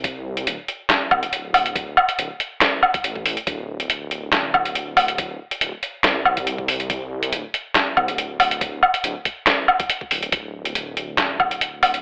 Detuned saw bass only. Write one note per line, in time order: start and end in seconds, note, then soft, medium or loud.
0.00 0.49 C2 medium
0.47 0.58 D1 loud
1.11 1.24 C2 medium
1.23 1.96 D1 loud
2.19 2.29 D1 loud
3.04 3.24 A1 medium
3.26 3.36 A1 loud
3.47 5.39 D1 loud
5.61 5.72 D1 loud
6.04 7.34 C2 loud
7.33 7.43 D1 loud
7.97 8.10 C2 medium
8.09 8.81 D1 loud
9.04 9.15 D1 loud
10.11 10.31 D1 medium
10.33 12.02 D1 loud